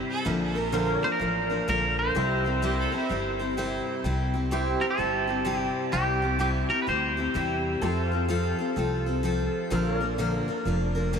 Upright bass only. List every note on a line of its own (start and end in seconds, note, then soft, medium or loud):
0.26 0.95 A#1 medium
1.20 1.61 A1 medium
1.68 2.08 A#1 medium
2.16 2.85 C2 medium
3.10 3.79 G1 medium
4.04 4.73 C2 medium
4.99 5.68 G1 medium
5.93 6.62 C2 medium
6.88 7.28 D2 medium
7.35 7.75 E2 medium
7.82 8.51 F2 medium
8.77 9.46 C2 medium
9.71 10.40 A#1 medium
10.66 11.19 F1 medium